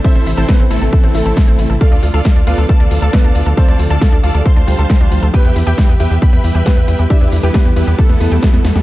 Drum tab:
HH |xxo-xxo-xxoxxxox|xxoxxxoxxxoxxxox|xxoxxxoxxxoxxxox|xxoxxxoxxxoxxxox|
SD |----o-------o---|----o-------o---|----o-------o---|----o-------o---|
BD |o---o---o---o---|o---o---o---o---|o---o---o---o---|o---o---o---o---|

HH |xxoxxxoxxxoxxxox|
SD |----o----o--oooo|
BD |o---o---o---o---|